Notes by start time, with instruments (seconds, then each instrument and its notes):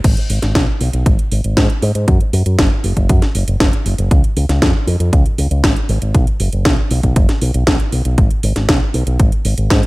0.04 fingered electric bass G#1, kick, closed hi-hat, crash
0.17 closed hi-hat
0.30 fingered electric bass G#1, open hi-hat
0.42 fingered electric bass G#1, snare, closed hi-hat
0.55 fingered electric bass B1, kick, snare, closed hi-hat
0.81 fingered electric bass B1, open hi-hat
0.93 fingered electric bass B1, closed hi-hat
1.06 fingered electric bass G#1, kick, closed hi-hat
1.19 closed hi-hat
1.32 fingered electric bass G#1, open hi-hat
1.44 fingered electric bass G#1, closed hi-hat
1.57 fingered electric bass G#2, kick, snare, closed hi-hat
1.70 closed hi-hat
1.82 fingered electric bass G#2, open hi-hat
1.95 fingered electric bass G#2, closed hi-hat
2.08 fingered electric bass F#2, kick, closed hi-hat
2.21 closed hi-hat
2.33 fingered electric bass F#2, open hi-hat
2.46 fingered electric bass F#2, closed hi-hat
2.59 fingered electric bass F#1, kick, snare, closed hi-hat
2.84 fingered electric bass F#1, open hi-hat
2.97 fingered electric bass F#1, kick, closed hi-hat
3.09 fingered electric bass F#2, kick, closed hi-hat
3.22 snare, closed hi-hat
3.35 fingered electric bass F#1, open hi-hat
3.48 fingered electric bass F#1, closed hi-hat
3.60 fingered electric bass F#1, kick, snare, closed hi-hat
3.73 closed hi-hat
3.86 fingered electric bass F#1, open hi-hat
3.98 fingered electric bass F#1, closed hi-hat
4.11 fingered electric bass C#2, kick, closed hi-hat
4.24 closed hi-hat
4.36 fingered electric bass C#2, open hi-hat
4.49 fingered electric bass C#2, snare, closed hi-hat
4.62 fingered electric bass F2, kick, snare, closed hi-hat
4.87 fingered electric bass F2, open hi-hat
5.00 fingered electric bass F2, closed hi-hat
5.13 fingered electric bass C#2, kick, closed hi-hat
5.26 closed hi-hat
5.38 fingered electric bass C#2, open hi-hat
5.51 fingered electric bass C#2, closed hi-hat
5.64 fingered electric bass G#1, kick, snare, closed hi-hat
5.76 closed hi-hat
5.89 fingered electric bass G#1, open hi-hat
6.02 fingered electric bass G#1, closed hi-hat
6.15 fingered electric bass B1, kick, closed hi-hat
6.27 closed hi-hat
6.40 fingered electric bass F#1, open hi-hat
6.53 fingered electric bass F#1, closed hi-hat
6.65 fingered electric bass B1, kick, snare, closed hi-hat
6.91 fingered electric bass B1, open hi-hat
7.03 fingered electric bass B1, kick, closed hi-hat
7.16 fingered electric bass F#1, kick, closed hi-hat
7.29 snare, closed hi-hat
7.42 fingered electric bass B1, open hi-hat
7.54 fingered electric bass B1, closed hi-hat
7.67 fingered electric bass B1, kick, snare, closed hi-hat
7.80 closed hi-hat
7.92 fingered electric bass B1, open hi-hat
8.05 fingered electric bass B1, closed hi-hat
8.18 fingered electric bass G#1, kick, closed hi-hat
8.31 closed hi-hat
8.43 fingered electric bass G#1, open hi-hat
8.56 fingered electric bass G#1, snare, closed hi-hat
8.69 fingered electric bass B1, kick, snare, closed hi-hat
8.94 fingered electric bass B1, open hi-hat
9.07 fingered electric bass B1, closed hi-hat
9.20 fingered electric bass G#1, kick, closed hi-hat
9.32 closed hi-hat
9.45 fingered electric bass G#1, open hi-hat
9.58 fingered electric bass G#1, closed hi-hat
9.70 fingered electric bass G#2, kick, snare, closed hi-hat
9.83 closed hi-hat